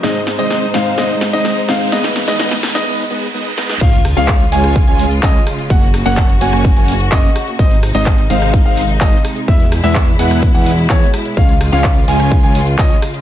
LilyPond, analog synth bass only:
\new Staff \with { instrumentName = "Analog synth bass" } { \clef bass \time 4/4 \key des \major \tempo 4 = 127 r1 | r1 | des,8. des,8. des,8. des,8. des,16 r8. | ges,,8. ges,,8. ges,,8. ges,,8. ges,,16 r8. |
aes,,8. aes,,8. aes,,8. aes,,8. aes,,16 r8. | e,8. e,8. e,8. e,8. e,16 r8. | des,8. des,8. des,8. des,8. des,16 r8. | }